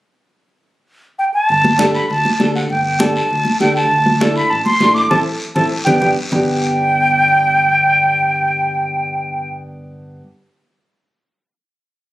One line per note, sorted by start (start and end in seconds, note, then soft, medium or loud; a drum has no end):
1.19 1.25 G5 medium
1.34 1.91 A5 medium
1.49 1.98 G1 medium
1.49 high conga soft
1.49 long guiro medium
1.64 high conga medium
1.78 2.00 D4 medium
1.78 2.00 G4 medium
1.78 2.00 A4 loud
1.78 high conga loud
1.78 short guiro medium
1.94 2.08 B5 medium
1.94 short guiro medium
2.10 2.22 D2 medium
2.10 2.52 A5 medium
2.10 high conga soft
2.10 long guiro medium
2.25 high conga medium
2.40 2.64 D2 medium
2.40 2.61 D4 medium
2.40 2.61 G4 medium
2.40 2.62 A4 medium
2.40 high conga medium
2.40 short guiro medium
2.55 2.61 F#5 medium
2.55 short guiro medium
2.69 3.19 G1 medium
2.69 2.84 G5 medium
2.69 high conga soft
2.69 long guiro medium
2.84 3.01 G5 medium
2.99 3.21 D4 medium
2.99 3.21 G4 medium
2.99 3.21 A4 medium
2.99 3.60 A5 medium
2.99 high conga loud
2.99 short guiro medium
3.16 short guiro medium
3.30 3.43 D2 medium
3.30 high conga soft
3.30 long guiro medium
3.45 high conga medium
3.60 3.85 D2 medium
3.60 3.82 D4 medium
3.60 3.81 G4 medium
3.60 3.82 A4 medium
3.60 3.75 G5 medium
3.60 high conga medium
3.60 short guiro medium
3.76 4.32 A5 loud
3.76 short guiro medium
3.90 4.39 D2 medium
3.90 high conga soft
3.90 long guiro medium
4.06 high conga medium
4.20 4.42 D4 medium
4.20 4.42 E4 medium
4.20 4.42 A4 loud
4.20 high conga loud
4.20 short guiro medium
4.36 4.52 B5 medium
4.36 short guiro medium
4.50 4.63 A1 medium
4.50 4.64 A5 loud
4.50 high conga soft
4.50 long guiro medium
4.65 4.96 C6 loud
4.65 high conga medium
4.80 5.05 A1 medium
4.80 5.02 D4 medium
4.80 5.03 E4 medium
4.80 5.03 A4 medium
4.80 high conga medium
4.80 short guiro medium
4.95 5.09 D6 loud
4.95 short guiro medium
5.10 5.22 A1 medium
5.10 5.21 C4 medium
5.10 5.21 E4 medium
5.10 5.21 A4 loud
5.10 5.20 A5 medium
5.10 low conga medium
5.10 long guiro medium
5.55 5.68 A1 medium
5.55 5.66 C4 medium
5.55 5.66 E4 medium
5.55 5.66 A4 medium
5.55 5.65 A5 medium
5.55 low conga medium
5.55 long guiro medium
5.85 5.98 G1 medium
5.85 5.96 B3 medium
5.85 5.96 D4 medium
5.85 5.96 G4 loud
5.85 5.95 G5 medium
5.85 low conga loud
5.85 long guiro loud
6.00 6.13 G1 medium
6.00 6.11 B3 medium
6.00 6.11 D4 medium
6.00 6.11 G4 medium
6.00 6.10 G5 loud
6.00 low conga loud
6.00 long guiro loud
6.30 10.20 G1 medium
6.30 10.19 B3 medium
6.30 10.20 D4 medium
6.30 10.21 G4 medium
6.30 9.50 G5 loud
6.30 low conga loud
6.30 long guiro medium